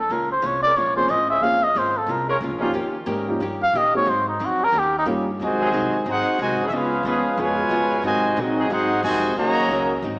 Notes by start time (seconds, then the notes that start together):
0.00 A4
0.09 C#2 A#2 G#3 C#4 F4 A#4
0.32 C5
0.42 C2 A#2 G#3 C#4 F4
0.46 C#5
0.62 G#3 C#4 F4 A#4 D5
0.76 A#1 A#2 G#3 C#4 F4 C#5
0.96 F3 A#3 C4 C#4 G#4 C5
1.08 A1 A#2 G#3 C#4 F4 D#5
1.30 G#3 C#4 F4 G#4 E5
1.41 A#1 A#2 F3 G#3 A#3 C4 C#4 F4 G#4 F5
1.63 D#5
1.75 G#1 A#2 G#3 C#4 F4 C5
1.97 A4
2.06 C2 A#2 G#3 C#4 F4
2.12 A#4
2.27 G#3 C#4 F4 A#4 C#5
2.41 C#2 A#2 G#3 C#4 F4
2.52 A#1
2.58 F3 G3 A#3 C#4 D#4 F4 G4
2.63 G#1
2.73 D#2 D#3 A#3 C#4 G4
3.06 G#2 D#3 G3 A#3 C#4 D#4 G4 A#4
3.28 F3 A#3 C#4 D#4 G4
3.40 G2 D#3 A#3 C#4 G4
3.63 F5
3.73 A#2 D#3 A#3 C#4 G4 D#5
3.94 G#3 A#3 C4 D#4 F#4 C#5
4.05 G#2 F#3 C4 D#4
4.10 C5
4.28 D#4
4.39 F2 G#2 F#3 C4 D#4
4.45 F#4
4.59 G3 C#4 D#4 A#4
4.64 A#4
4.72 D#2 D#3 A#3 C#4 G4
4.79 G4
4.98 D#4
5.05 G2 D#3 G3 A#3 C#4 D#4 F4 G4
5.39 D#2 G#2 D#3 F#3 C4 D#4 D#5 G#5
5.44 C3 G#3 F#4 C5
5.60 F#3 C4 D#4 G#4
5.72 C2 G#2 F#3 C4 D#4
5.93 muted upright bass stroke
6.04 G#1 G#2 F#3 C4 D#4 F#4
6.09 D#4 G#4 C5 F#5
6.27 muted upright bass stroke
6.38 C2 G#2 C3 D#3 F#3 G#3 C4 D#4 F#4 C5 D#5 G#5
6.50 G#1
6.60 F#1 F3 B3 C#4 G#4
6.68 C#2 C#3 E5
6.72 G#3 B3 C#4 F4 G#4 B4 F5
7.03 D#2 C#3 F3 G#3 B3 C#4 F4 G#4 B4 F5
7.24 muted upright bass stroke
7.37 F2 B2 C#3 F3 G#3 B3 F4 B4 C#5 G#5
7.69 F#2 C#3 G#3 B3 F4
8.02 G#2 C3 D#3 F#3 G#3 C4 D#4 F#4 C5 D#5 G#5
8.36 G#2 A#2 F#3 C4 D#4 F#4 G#4 D#5
8.59 F#3 C4 D#4 G#4
8.69 G#2 F#3 C4 D#4 F#4 G#4 C5 F#5
9.03 F2 G#2 C3 D#3 F#3 G#3 C4 D#4 F#4 C5 D#5 G#5
9.36 D#2 C#3 D#3 F#3 A#3 C#4 F#4 C#5 D#5 A#5
9.68 C#2 D#3 F#3 A#3 C#4 D#4 F#4 A#4
10.02 G#1 G#2 F#3 C4 D#4